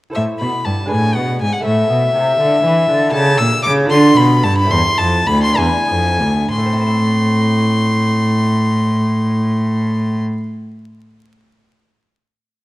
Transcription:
0.10 lute E4 A4 C5
0.14 lute A2, cello A2, violin E5
0.40 lute B2, cello B2, violin B5
0.65 lute G2, cello G2, violin A5
0.86 lute D4 G#4 B4
0.90 lute A2, cello A2, violin G#5
1.15 lute B2, cello B2, violin F#5
1.40 lute G#2, cello G#2, violin G#5
1.53 violin F#5
1.60 lute E4 A4 C5
1.64 lute A2, cello A2, violin E5
1.89 lute B2, cello B2
2.15 lute C3, cello C3
2.40 cello D3, lute D3
2.64 lute E3, cello E3
2.89 lute D3, cello D3
3.10 lute E4 G4 A4, violin A5
3.14 lute C#3, cello C#3
3.38 lute A#2, cello A#2, violin E6
3.63 lute C#3, cello C#3, violin D6
3.85 lute D4 F4 A4
3.90 lute D3, cello D3, violin C6
4.16 lute B2, cello B2, violin B5
4.43 lute G2, cello G2, violin A5
4.58 violin B5
4.65 lute C4 E4 A4
4.70 lute E2, cello E2, violin C6
4.98 lute F2, cello F2, violin A5
5.27 lute D2, cello D2, violin B5
5.43 violin C6
5.53 lute D4 E4 B4
5.57 lute E2, cello E2, violin G#5
5.87 lute F2, cello F2
6.20 lute D2, cello D2
6.51 lute A2, cello A2, violin C6
6.58 lute A3
6.66 lute C4
6.73 lute E4
6.80 lute C5
6.87 lute E5

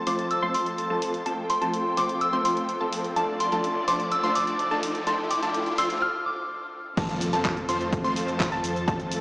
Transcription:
Already playing: string section F4 A4 C5 A5, riser
0.07 detuned saw bass F2, supersaw synth F3 A3 C4 F4 C5, synth pluck C6, synth bell D6, open hi-hat
0.19 closed hi-hat
0.31 synth bell E6, closed hi-hat
0.43 detuned saw bass F2, supersaw synth F3 A3 C4 F4 C5, synth pluck C6
0.54 synth bell C6, open hi-hat
0.66 closed hi-hat
0.78 closed hi-hat
0.90 detuned saw bass F2, supersaw synth F3 A3 C4 F4 A4, synth pluck A5
1.02 open hi-hat
1.14 closed hi-hat
1.26 detuned saw bass F2, supersaw synth F3 A3 C4 F4 A4, string section G5, synth pluck A5, synth bell A5, closed hi-hat
1.50 synth bell C6, open hi-hat
1.62 detuned saw bass F2, supersaw synth F3 A3 C4 F4 A4, synth pluck A5, closed hi-hat
1.74 closed hi-hat
1.97 detuned saw bass F2, supersaw synth F3 A3 C4 F4 C5, synth pluck C6, synth bell D6, open hi-hat
2.09 closed hi-hat
2.21 synth bell E6, closed hi-hat
2.33 detuned saw bass F2, supersaw synth F3 A3 C4 F4 C5, synth pluck C6
2.45 synth bell C6, open hi-hat
2.57 closed hi-hat
2.69 closed hi-hat
2.81 detuned saw bass F2, supersaw synth F3 A3 C4 F4 A4, synth pluck A5
2.93 open hi-hat
3.04 closed hi-hat
3.16 detuned saw bass D2, supersaw synth F3 A3 D4 F4 A4, string section D5 A5, synth pluck A5, synth bell A5, closed hi-hat
3.40 synth bell C6, open hi-hat
3.52 detuned saw bass D2, supersaw synth F3 A3 D4 F4 A4, synth pluck A5, closed hi-hat
3.64 closed hi-hat
3.88 detuned saw bass D2, supersaw synth F3 A3 D4 F4 C5, synth pluck C6, synth bell D6, open hi-hat
4.00 closed hi-hat
4.12 synth bell E6, closed hi-hat
4.23 detuned saw bass D2, supersaw synth F3 A3 D4 F4 C5, synth pluck C6
4.35 synth bell D6, open hi-hat
4.47 closed hi-hat
4.59 closed hi-hat
4.71 detuned saw bass D2, supersaw synth F3 A3 D4 F4 A4, synth pluck A5
4.83 open hi-hat
4.95 closed hi-hat
5.07 detuned saw bass D2, supersaw synth F3 A3 D4 F4 A4, string section G5, synth pluck A5, synth bell C6, closed hi-hat
5.31 synth bell D6, open hi-hat
5.42 detuned saw bass D2, supersaw synth F3 A3 D4 F4 A4, synth pluck A5, closed hi-hat
5.54 closed hi-hat
5.66 closed hi-hat
5.78 detuned saw bass D2, supersaw synth F3 A3 D4 F4 C5, synth pluck C6, synth bell E6, open hi-hat
5.90 open hi-hat
6.02 synth bell F6
6.26 synth bell D6
6.97 detuned saw bass F2, supersaw synth F3 A3 C4 F4 A4, string section F4 A4 C5 A5, synth pluck A5, kick, closed hi-hat, crash, impact, shaker
7.09 closed hi-hat, shaker
7.21 open hi-hat, shaker
7.33 detuned saw bass F2, supersaw synth F3 A3 C4 F4 A4, synth pluck A5, closed hi-hat, shaker
7.45 kick, clap, closed hi-hat, shaker
7.57 closed hi-hat, shaker
7.69 detuned saw bass F2, supersaw synth F3 A3 C4 F4 C5, synth pluck C6, open hi-hat, shaker
7.81 closed hi-hat, shaker
7.93 kick, closed hi-hat, shaker
8.04 detuned saw bass F2, supersaw synth F3 A3 C4 F4 C5, synth pluck C6, closed hi-hat, shaker
8.16 open hi-hat, shaker
8.28 closed hi-hat, shaker
8.40 kick, clap, closed hi-hat, shaker
8.52 detuned saw bass F2, supersaw synth F3 A3 C4 F4 A4, synth pluck A5, closed hi-hat
8.64 open hi-hat, shaker
8.76 shaker
8.88 detuned saw bass F2, supersaw synth F3 A3 C4 F4 A4, synth pluck A5, kick, closed hi-hat, shaker
9.00 closed hi-hat, shaker
9.12 open hi-hat, shaker

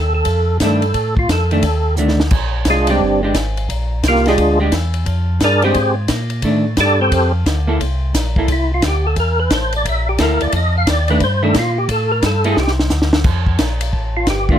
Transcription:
Already playing: tonewheel organ D#2 A4
0.15 tonewheel organ A4
0.25 tonewheel organ F2, kick, ride
0.60 tonewheel organ G2, hollow-body jazz guitar D#3 A3 D4, kick, snare, hi-hat pedal, ride
0.64 tonewheel organ A4
0.82 ride
0.94 tonewheel organ A2, kick, ride
1.17 tonewheel organ F4, kick
1.29 tonewheel organ F2 A4, kick, snare, hi-hat pedal, ride
1.51 hollow-body jazz guitar D#3 A3 D4, tonewheel organ A4, ride
1.63 tonewheel organ D#2, kick, ride
1.97 tonewheel organ D2, hollow-body jazz guitar D#3 A3 D4, hi-hat pedal
2.08 snare
2.20 snare
2.31 tonewheel organ A#1, kick, crash
2.65 tonewheel organ C2, kick, snare, hi-hat pedal, ride
2.70 tonewheel organ G#3 D4 F4 G#4
2.87 tonewheel organ G3 C4 D4 G4, hollow-body jazz guitar G#3 D4 G4, ride
3.00 tonewheel organ G1, kick
3.23 hollow-body jazz guitar G#3 D4 G4
3.34 tonewheel organ G#1, kick, snare, hi-hat pedal, ride
3.57 ride
3.69 tonewheel organ A#1, kick, ride
4.03 tonewheel organ C2, kick, snare, hi-hat pedal, ride
4.08 tonewheel organ A#3 F4 G4 A#4
4.15 snare
4.26 hollow-body jazz guitar G#3 D4 G4, tonewheel organ G#3 D4 F4 G#4, snare, ride
4.38 tonewheel organ D2, kick, ride
4.60 hollow-body jazz guitar G#3 D4 G4
4.72 tonewheel organ E2, kick, snare, hi-hat pedal, ride
4.94 ride
5.06 tonewheel organ F2, kick, ride
5.40 tonewheel organ G2 A#4 D5, kick, snare, hi-hat pedal, ride
5.44 tonewheel organ D4 G#4
5.62 hollow-body jazz guitar G#3 D4 G4, tonewheel organ C4 G4 G#4 C5, ride
5.74 tonewheel organ G#2, kick, ride
6.08 tonewheel organ A#2, kick, snare, hi-hat pedal, ride
6.30 ride
6.42 tonewheel organ A2, hollow-body jazz guitar D#3 A3 D4, kick, ride
6.77 tonewheel organ G2 D4 G4 A4 D5, kick, snare, hi-hat pedal, ride
7.01 tonewheel organ C4 G4 A4 C5
7.12 tonewheel organ F2, kick, ride
7.46 tonewheel organ D2, kick, snare, hi-hat pedal, ride
7.67 hollow-body jazz guitar A#3 E4 A4
7.80 tonewheel organ C2, kick, ride
8.14 tonewheel organ A#1, kick, snare, hi-hat pedal, ride
8.36 hollow-body jazz guitar A#3 E4 A4, kick
8.48 tonewheel organ C2, kick, ride
8.52 tonewheel organ E4
8.74 tonewheel organ F4
8.82 tonewheel organ D2, kick, snare, hi-hat pedal, ride
8.88 tonewheel organ G4
9.07 tonewheel organ A4
9.16 tonewheel organ E2 A#4, kick, ride
9.40 tonewheel organ B4
9.50 tonewheel organ A1, kick, snare, hi-hat pedal, ride
9.55 tonewheel organ C5
9.73 tonewheel organ D5, ride
9.85 tonewheel organ A#1 E5, kick, ride
10.09 tonewheel organ G4
10.18 tonewheel organ D2 A#4, hollow-body jazz guitar A#3 E4 A4, kick, snare, hi-hat pedal, ride
10.41 tonewheel organ D2 D5, ride
10.52 tonewheel organ F2, kick, ride
10.56 tonewheel organ D#5
10.78 tonewheel organ F5
10.87 tonewheel organ D#2 D5, kick, snare, hi-hat pedal, ride
11.08 hollow-body jazz guitar D#3 A3 D4, tonewheel organ B4, ride
11.20 tonewheel organ G2 C5, kick, ride
11.43 hollow-body jazz guitar D#3 A3 D4, tonewheel organ A4
11.54 tonewheel organ A#2, kick, snare, hi-hat pedal, ride
11.59 tonewheel organ F4
11.78 tonewheel organ G4
11.89 tonewheel organ A2 A4, kick, ride
12.12 tonewheel organ A#4
12.23 tonewheel organ G2 A4, kick, snare, hi-hat pedal, ride
12.44 hollow-body jazz guitar A#3 E4 A4, tonewheel organ G#4, ride
12.57 tonewheel organ C2 G4, snare
12.68 snare
12.79 snare
12.90 tonewheel organ D2, snare, hi-hat pedal
13.02 snare
13.13 snare
13.24 tonewheel organ F2, kick, crash
13.46 kick
13.58 tonewheel organ A#1, kick, snare, hi-hat pedal, ride
13.81 ride
13.93 tonewheel organ A1, kick
14.17 tonewheel organ F4
14.27 tonewheel organ G1 G4, kick, snare, hi-hat pedal, ride
14.49 hollow-body jazz guitar D#3 A3 D4, tonewheel organ F4, kick

